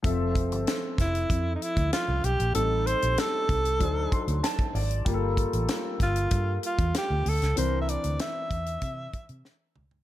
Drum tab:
HH |x-xxx-xxx-xxx-xx|x-xxx-xxx-xxxxox|x-xxx-xxx-xxx-ox|x-xxx-xxx-xx----|
SD |----o-o-----o---|----o-------o---|----o-o-----o--o|----o-------o---|
T2 |----------------|----------------|----------------|--------------o-|
FT |----------------|----------------|----------------|---------------o|
BD |o-o---o-o--o----|------o-o-o--o--|o-o---o-o--o----|------o-o-o-----|